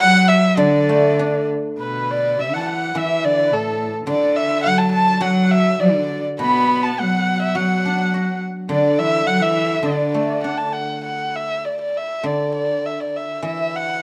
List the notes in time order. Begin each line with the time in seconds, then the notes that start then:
0.00 F#3 F#5
0.28 E5
0.57 D3 D5
0.89 A3
1.19 D4
1.78 B2 B4
2.11 D5
2.39 E3 E5
2.54 F#5 A5
2.60 F#5 A5
2.67 F#5
2.95 E3 E5
3.24 D3 D5
3.47 B4
3.53 A2 A4
4.06 D3 D5
4.36 E5
4.63 F#3 F#5
4.78 A5
4.92 A5
5.21 F#3 F#5
5.25 F#5
5.51 E5
5.80 D3 D5
6.39 B2 B3 B5
6.83 A5
6.99 F#3 F#5
7.42 E5
7.55 F#3 F#5
7.85 D4
8.14 F#4
8.69 D3 D5
8.98 E3 E5
9.26 F#3 F#5
9.41 E3 E5
9.83 D3 D5
10.14 A3
10.43 D4 F#5
10.57 A5
10.73 F#5
11.04 F#5
11.36 E5
11.65 D5
11.81 D5
11.96 E5
12.23 D3 D5
12.55 D5
12.86 E5
13.00 D5
13.16 E5
13.42 E3 E5
13.76 F#5